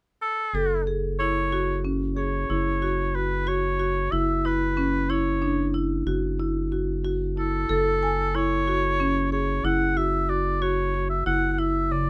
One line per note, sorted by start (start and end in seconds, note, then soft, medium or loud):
0.22 0.83 A4 medium
0.54 2.45 F#1 medium
0.54 0.82 A4 medium
0.87 1.14 G#4 medium
1.19 1.47 E4 medium
1.19 1.80 C#5 medium
1.52 1.79 F#4 medium
1.85 2.11 C#4 medium
2.17 2.44 G#4 medium
2.17 3.17 C#5 medium
2.50 4.09 F#1 medium
2.50 2.77 E4 medium
2.82 3.09 F#4 medium
3.15 3.42 F#4 medium
3.15 3.49 B4 medium
3.47 3.74 F#4 medium
3.47 4.13 C#5 medium
3.80 4.06 F#4 medium
4.12 6.03 F#1 medium
4.12 4.39 E4 medium
4.12 4.47 E5 medium
4.45 4.72 E4 medium
4.45 5.11 B4 medium
4.77 5.04 C#4 medium
5.10 5.37 E4 medium
5.10 5.75 C#5 medium
5.42 5.69 D4 medium
5.74 6.01 E4 medium
6.06 7.66 F#1 medium
6.06 6.34 F#4 medium
6.39 6.66 E4 medium
6.72 6.99 F#4 medium
7.05 7.31 F#4 medium
7.37 7.64 E4 soft
7.37 8.37 A4 medium
7.69 9.60 F#1 medium
7.69 7.96 A4 medium
8.03 8.29 G#5 medium
8.35 8.61 E4 medium
8.35 9.32 C#5 medium
8.67 8.94 F#4 medium
9.00 9.26 C#4 medium
9.32 9.59 G#4 medium
9.32 9.66 C#5 medium
9.64 11.23 F#1 medium
9.64 9.91 E4 medium
9.64 9.99 F#5 medium
9.97 10.24 F#4 medium
9.97 10.31 E5 medium
10.29 10.56 F#4 medium
10.29 10.63 D5 medium
10.62 10.88 F#4 medium
10.62 11.09 C#5 medium
10.94 11.21 F#4 medium
11.10 11.25 E5 medium
11.26 12.10 F#1 medium
11.26 11.53 E4 medium
11.26 11.53 F#5 medium
11.53 11.61 F#5 medium
11.59 11.85 E4 medium
11.59 11.94 E5 medium
11.92 12.10 C#3 medium
11.92 12.10 D5 medium